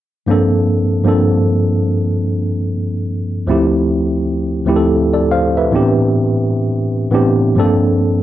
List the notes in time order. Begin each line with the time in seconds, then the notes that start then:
0.27 G2 F3 A#3 C4 D4
0.31 A4
1.04 G2 F3 A#3 C4 D4
1.08 A4
3.47 D2 F3 A3 C4 E4
3.51 G4
4.65 D2 F3 A3 C4 E4
4.69 G4
4.76 A4
5.14 A4 D5
5.32 C5 F5
5.57 B4 E5
5.71 A2 E3 B3 C4 D4
5.76 G4
7.10 A2 E3 B3 C4 D4
7.15 G4
7.55 G2 F3 A3 C4
7.59 D4 A4
7.64 A#3